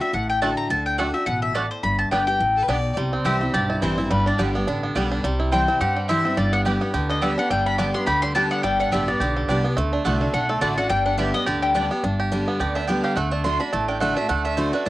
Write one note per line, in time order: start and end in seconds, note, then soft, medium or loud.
0.00 0.13 D4 soft
0.00 0.12 F#4 medium
0.00 0.13 E5 medium
0.13 0.53 A1 medium
0.13 0.67 A2 medium
0.13 0.29 F#5 medium
0.30 0.41 G5 medium
0.41 0.69 D3 medium
0.41 0.52 A3 loud
0.41 0.49 A3 medium
0.41 0.69 A3 medium
0.41 0.45 D4 medium
0.41 0.69 D4 medium
0.41 0.52 F#4 loud
0.41 0.69 F#4 medium
0.41 0.52 D5 loud
0.41 0.52 F#5 medium
0.41 0.57 A5 medium
0.57 0.69 A#5 medium
0.70 1.10 D2 medium
0.70 0.97 D3 medium
0.70 0.85 A5 medium
0.86 0.98 G5 medium
0.98 1.13 D3 medium
0.98 1.08 A3 medium
0.98 1.14 A3 medium
0.98 1.06 A3 medium
0.98 1.14 D4 medium
0.98 1.02 D4 medium
0.98 1.08 F#4 loud
0.98 1.12 F#4 medium
0.98 1.08 D5 loud
0.98 1.08 F#5 medium
0.98 1.13 F#5 medium
1.14 1.27 D4 soft
1.14 1.26 F#4 medium
1.14 1.26 E5 medium
1.26 1.67 A1 medium
1.26 1.54 B2 medium
1.26 1.42 F#5 medium
1.42 1.54 E5 medium
1.55 1.82 A2 medium
1.55 1.65 A3 loud
1.55 1.62 A3 medium
1.55 1.58 D4 medium
1.55 1.65 F#4 medium
1.55 1.70 D5 medium
1.55 1.65 D5 medium
1.55 1.65 F#5 medium
1.71 1.83 C5 medium
1.83 2.03 G1 medium
1.83 2.38 G2 medium
1.83 1.98 B5 medium
1.99 2.11 A5 medium
2.11 2.36 G1 medium
2.11 2.27 D3 medium
2.11 2.27 G3 medium
2.11 2.19 G3 medium
2.11 2.22 B3 medium
2.11 2.27 B3 medium
2.11 2.19 B3 medium
2.11 2.19 D4 medium
2.11 2.22 G4 loud
2.11 2.26 G4 medium
2.11 2.22 D5 loud
2.11 2.26 G5 medium
2.11 2.22 G5 medium
2.27 2.40 B3 medium
2.27 2.40 G4 medium
2.27 2.65 G5 medium
2.40 2.64 A1 medium
2.40 2.67 A2 medium
2.57 2.64 A4 medium
2.63 2.69 B4 medium
2.68 2.92 B1 medium
2.68 2.96 B2 medium
2.68 2.76 G3 medium
2.68 2.78 B3 medium
2.68 2.76 B3 medium
2.68 2.76 D4 medium
2.68 2.78 G4 loud
2.68 2.79 D5 medium
2.68 2.95 D5 loud
2.68 2.79 G5 medium
2.97 3.17 C2 medium
2.97 3.51 C3 medium
2.97 4.10 G3 medium
3.13 3.40 C4 medium
3.24 3.49 C2 medium
3.24 3.40 E3 medium
3.24 3.41 G3 medium
3.24 3.35 C4 medium
3.24 3.41 C4 medium
3.24 3.35 E4 medium
3.24 3.40 E4 loud
3.24 3.53 G4 medium
3.24 3.35 C5 medium
3.24 3.52 E5 medium
3.24 3.35 G5 medium
3.41 3.80 C4 soft
3.41 3.54 C4 soft
3.41 3.53 E4 medium
3.54 3.78 B1 medium
3.54 4.08 G2 loud
3.54 4.94 G4 medium
3.54 3.80 D5 medium
3.70 3.97 E4 medium
3.81 4.06 A1 medium
3.81 3.97 E3 medium
3.81 4.10 E3 medium
3.81 3.98 G3 medium
3.81 3.92 C4 medium
3.81 3.98 C4 medium
3.81 3.92 E4 medium
3.81 3.97 E4 loud
3.81 3.92 C5 medium
3.81 4.09 C5 medium
3.81 3.92 G5 medium
3.98 4.11 C4 medium
3.98 4.10 E4 medium
4.10 4.30 G1 loud
4.10 4.65 G2 medium
4.10 4.39 G3 medium
4.10 4.26 B4 medium
4.26 4.65 D4 medium
4.26 4.39 D5 medium
4.38 4.63 G1 medium
4.38 4.54 D3 medium
4.38 4.95 G3 medium
4.38 4.54 G3 medium
4.38 4.49 B3 medium
4.38 4.55 B3 medium
4.38 4.49 G4 loud
4.38 4.53 G4 medium
4.38 4.49 D5 medium
4.38 4.49 G5 loud
4.55 4.82 B3 medium
4.55 4.67 B3 soft
4.55 4.67 G4 medium
4.67 4.91 A1 medium
4.67 4.94 D3 medium
4.67 5.08 D4 medium
4.83 5.22 B3 medium
4.95 5.20 B1 medium
4.95 5.23 D3 medium
4.95 5.24 G3 medium
4.95 5.23 G3 medium
4.95 5.05 B3 medium
4.95 5.23 B3 medium
4.95 5.05 G4 medium
4.95 5.23 G4 medium
4.95 5.06 D5 medium
4.95 5.06 G5 loud
5.12 5.24 D4 medium
5.24 5.64 C2 loud
5.24 5.78 C3 medium
5.24 5.52 G3 medium
5.40 5.78 E4 medium
5.52 5.68 E3 medium
5.52 5.96 G3 medium
5.52 5.68 G3 medium
5.52 5.62 C4 medium
5.52 5.68 C4 medium
5.52 5.62 E4 loud
5.52 5.67 E4 loud
5.52 5.62 C5 medium
5.52 5.62 G5 loud
5.52 5.79 G5 medium
5.68 6.07 C4 medium
5.68 5.81 C4 soft
5.68 5.80 E4 medium
5.81 6.21 G2 medium
5.81 6.35 G2 medium
5.81 6.66 G4 medium
5.81 6.07 F#5 medium
5.96 6.37 G3 medium
6.08 6.24 E3 medium
6.08 6.25 G3 loud
6.08 6.19 C4 medium
6.08 6.25 C4 medium
6.08 6.19 E4 loud
6.08 6.37 E4 medium
6.08 6.24 E4 medium
6.08 6.19 C5 loud
6.08 6.35 E5 medium
6.08 6.19 G5 loud
6.25 6.37 C4 medium
6.25 6.38 C4 medium
6.25 6.37 E4 medium
6.37 6.77 G1 medium
6.37 6.92 G2 loud
6.37 7.50 G3 medium
6.37 6.53 D5 medium
6.53 6.81 B3 medium
6.53 6.60 F#5 loud
6.65 6.81 D3 medium
6.65 6.81 G3 medium
6.65 6.75 B3 medium
6.65 6.81 B3 medium
6.65 6.75 G4 medium
6.65 6.93 G4 medium
6.65 6.80 G4 medium
6.65 6.76 D5 medium
6.65 6.76 G5 loud
6.81 7.94 B3 medium
6.81 6.94 B3 medium
6.81 6.93 G4 medium
6.94 7.34 D2 medium
6.94 7.21 D3 loud
6.94 8.07 G4 medium
7.10 7.37 D4 medium
7.10 7.22 D#5 medium
7.21 7.37 D3 medium
7.21 7.63 D3 medium
7.21 7.38 G3 medium
7.21 7.32 B3 medium
7.21 7.38 B3 medium
7.21 7.32 G4 loud
7.21 7.37 G4 medium
7.21 7.32 D5 loud
7.21 7.38 E5 medium
7.21 7.32 G5 loud
7.38 7.51 B3 soft
7.38 7.66 D4 medium
7.38 7.50 G4 medium
7.38 7.50 F#5 medium
7.50 7.90 G1 medium
7.50 8.05 G2 medium
7.50 7.77 G3 medium
7.50 7.66 G5 medium
7.66 8.35 D4 medium
7.66 7.78 B5 loud
7.78 7.94 D3 medium
7.78 8.20 G3 medium
7.78 7.94 G3 loud
7.78 7.89 B3 loud
7.78 7.95 B3 loud
7.78 7.89 G4 loud
7.78 7.93 G4 medium
7.78 7.89 D5 medium
7.78 7.89 G5 loud
7.78 7.94 D6 medium
7.94 8.33 B3 medium
7.94 8.08 B3 medium
7.94 8.07 G4 medium
7.94 8.06 C6 medium
8.06 8.47 D2 medium
8.06 8.34 D3 medium
8.06 8.48 G4 medium
8.06 8.22 B5 medium
8.22 8.62 G3 medium
8.22 8.34 C6 loud
8.35 8.62 D3 medium
8.35 8.63 G3 medium
8.35 8.45 B3 medium
8.35 8.63 B3 medium
8.35 8.79 D4 medium
8.35 8.46 G4 loud
8.35 8.63 G4 loud
8.35 8.46 D5 loud
8.35 8.46 G5 loud
8.35 8.50 A5 medium
8.51 8.90 B3 medium
8.51 8.63 F#5 medium
8.63 8.84 G1 medium
8.63 9.18 G2 medium
8.63 8.91 G3 medium
8.63 8.79 G5 medium
8.80 9.48 D4 medium
8.80 8.92 F#5 loud
8.91 9.16 A1 medium
8.91 9.07 D3 medium
8.91 9.33 G3 medium
8.91 9.08 G3 loud
8.91 9.02 B3 loud
8.91 9.08 B3 medium
8.91 9.02 G4 loud
8.91 9.07 G4 loud
8.91 9.02 D5 loud
8.91 9.08 E5 medium
8.91 9.02 G5 loud
9.08 9.46 B3 medium
9.08 9.21 B3 medium
9.08 9.20 G4 medium
9.08 9.73 D5 medium
9.20 9.44 B1 medium
9.20 9.48 D3 loud
9.20 9.61 G4 medium
9.36 9.75 G3 medium
9.48 9.73 C2 medium
9.48 9.64 D3 medium
9.48 9.65 G3 medium
9.48 9.59 B3 medium
9.48 9.65 B3 medium
9.48 9.92 D4 medium
9.48 9.59 G4 medium
9.48 9.63 G4 loud
9.48 9.59 D5 medium
9.48 9.59 G5 medium
9.64 9.77 B3 medium
9.64 9.78 B3 soft
9.64 9.77 G4 medium
9.77 9.97 D2 medium
9.77 10.04 D3 medium
9.77 10.04 A3 medium
9.93 10.21 D4 medium
10.04 10.29 C2 medium
10.04 10.32 D3 medium
10.04 10.15 A3 loud
10.04 10.46 A3 medium
10.04 10.33 A3 loud
10.04 10.33 D4 medium
10.04 10.15 F#4 loud
10.04 10.33 F#4 loud
10.04 10.15 D5 loud
10.04 10.15 F#5 loud
10.21 10.34 D4 medium
10.33 10.58 B1 medium
10.33 10.88 A2 medium
10.33 10.61 D4 medium
10.33 10.49 F#5 medium
10.49 10.88 A3 medium
10.49 10.61 A4 medium
10.61 10.86 A1 medium
10.61 10.77 D3 loud
10.61 10.72 A3 medium
10.61 10.77 A3 medium
10.61 10.78 D4 medium
10.61 10.77 D4 medium
10.61 10.72 F#4 medium
10.61 10.76 F#4 loud
10.61 10.77 D5 medium
10.61 10.72 D5 loud
10.61 10.72 F#5 loud
10.77 11.06 D4 medium
10.77 10.90 D4 medium
10.77 10.90 F#4 medium
10.77 10.89 F#5 loud
10.89 11.30 G1 medium
10.89 11.44 G2 loud
10.89 11.17 G3 medium
10.89 11.05 G5 loud
11.06 11.44 D4 medium
11.06 11.18 F#5 medium
11.18 11.33 D3 medium
11.18 11.34 G3 medium
11.18 11.59 G3 medium
11.18 11.28 B3 medium
11.18 11.34 B3 medium
11.18 11.28 G4 medium
11.18 11.33 G4 medium
11.18 11.29 D5 loud
11.18 11.34 E5 medium
11.18 11.29 G5 medium
11.34 11.73 B3 medium
11.34 11.47 B3 soft
11.34 11.46 G4 medium
11.34 11.46 D#5 loud
11.46 11.87 D2 medium
11.46 11.73 D3 loud
11.46 11.88 G4 medium
11.46 11.62 D5 medium
11.62 12.01 G3 medium
11.62 11.70 G4 medium
11.74 11.90 D3 medium
11.74 11.90 G3 medium
11.74 11.85 B3 medium
11.74 11.91 B3 loud
11.74 12.02 D4 medium
11.74 11.85 G4 medium
11.74 11.90 G4 medium
11.74 11.85 D5 loud
11.74 11.85 G5 loud
11.91 12.03 B3 medium
11.91 12.04 B3 medium
11.91 12.03 G4 medium
12.03 12.43 G1 medium
12.03 12.58 G2 medium
12.03 12.32 D4 medium
12.20 12.58 G4 medium
12.32 12.59 D3 medium
12.32 12.59 G3 medium
12.32 12.59 B3 loud
12.32 12.76 D4 medium
12.32 12.60 G4 medium
12.48 12.86 B3 medium
12.60 13.00 D2 medium
12.60 12.87 D3 medium
12.60 13.01 G4 medium
12.60 12.75 D5 medium
12.75 13.32 D4 medium
12.75 12.87 E5 medium
12.88 13.15 D3 medium
12.88 13.16 G3 medium
12.88 13.17 B3 medium
12.88 13.16 B3 loud
12.88 13.16 G4 medium
12.88 13.03 G5 loud
13.04 13.17 G4 medium
13.04 13.15 F5 medium
13.16 13.56 D2 medium
13.16 13.44 D3 medium
13.16 13.58 A3 medium
13.16 13.31 F#5 medium
13.31 13.45 D4 medium
13.31 13.44 A5 medium
13.44 13.60 D3 medium
13.44 13.60 A3 medium
13.44 13.60 D4 medium
13.44 13.61 D4 medium
13.44 13.59 F#4 medium
13.44 13.59 C6 loud
13.60 13.89 D4 medium
13.60 13.73 D4 medium
13.60 13.73 F#4 medium
13.60 13.72 B5 loud
13.73 14.13 A1 medium
13.73 14.27 A2 medium
13.73 14.00 A3 medium
13.73 13.88 A5 medium
13.88 14.17 D4 medium
13.88 14.00 G5 medium
14.00 14.17 D3 medium
14.00 14.28 A3 medium
14.00 14.17 A3 medium
14.00 14.17 D4 loud
14.00 14.16 F#4 medium
14.00 14.16 F#5 medium
14.17 14.45 D4 medium
14.17 14.30 D4 soft
14.17 14.29 F#4 medium
14.17 14.29 E5 medium
14.29 14.70 D2 medium
14.29 14.56 D3 medium
14.29 14.57 A3 medium
14.29 14.44 F#5 loud
14.45 14.74 D4 medium
14.45 14.57 E5 loud
14.57 14.73 D3 medium
14.57 14.73 A3 loud
14.57 14.89 A3 medium
14.57 14.73 D4 loud
14.57 14.72 F#4 medium
14.57 14.73 C5 medium
14.73 14.89 D4 medium
14.73 14.86 D4 medium
14.73 14.86 F#4 medium
14.73 14.85 B4 loud
14.85 14.89 A4 medium